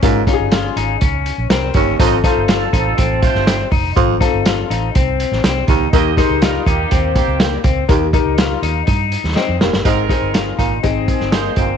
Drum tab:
HH |x-x-x-x-x-x-x-x-|x-x-x-x-x-x-x-o-|x-x-x-x-x-x-x-x-|x-x-x-x-x-x-x-x-|
SD |--o-o-------o---|--o-o------oo---|--o-o------oo---|--o-o-------o---|
BD |o-o-----o-----o-|o-o---o-o-o---o-|o-o-----o-----o-|o-o---o-o-o---o-|

HH |x-x-x-x-x-x-----|x-x-x-x-x-x-x-x-|
SD |----o------oo-oo|--o-o------oo---|
BD |o-o-----o-------|o-o---o-o-o---o-|